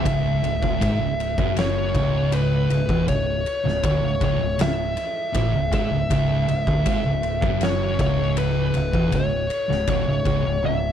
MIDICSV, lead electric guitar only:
0, 0, Header, 1, 2, 480
1, 0, Start_track
1, 0, Key_signature, 4, "minor"
1, 0, Tempo, 754717
1, 37, Time_signature, 4, 2, 24, 8
1, 6945, End_track
2, 0, Start_track
2, 0, Title_t, "Lead electric guitar"
2, 0, Program_c, 0, 29
2, 0, Note_on_c, 0, 76, 111
2, 1006, Note_off_c, 0, 76, 0
2, 1008, Note_on_c, 0, 73, 100
2, 1484, Note_on_c, 0, 71, 95
2, 1499, Note_off_c, 0, 73, 0
2, 1937, Note_off_c, 0, 71, 0
2, 1961, Note_on_c, 0, 73, 101
2, 2442, Note_off_c, 0, 73, 0
2, 2449, Note_on_c, 0, 73, 88
2, 2692, Note_off_c, 0, 73, 0
2, 2701, Note_on_c, 0, 73, 93
2, 2933, Note_off_c, 0, 73, 0
2, 2936, Note_on_c, 0, 76, 102
2, 3645, Note_off_c, 0, 76, 0
2, 3652, Note_on_c, 0, 76, 103
2, 4856, Note_off_c, 0, 76, 0
2, 4858, Note_on_c, 0, 73, 93
2, 5088, Note_off_c, 0, 73, 0
2, 5096, Note_on_c, 0, 73, 93
2, 5312, Note_off_c, 0, 73, 0
2, 5332, Note_on_c, 0, 71, 90
2, 5820, Note_off_c, 0, 71, 0
2, 5823, Note_on_c, 0, 73, 100
2, 6286, Note_off_c, 0, 73, 0
2, 6293, Note_on_c, 0, 73, 91
2, 6778, Note_off_c, 0, 73, 0
2, 6780, Note_on_c, 0, 76, 95
2, 6945, Note_off_c, 0, 76, 0
2, 6945, End_track
0, 0, End_of_file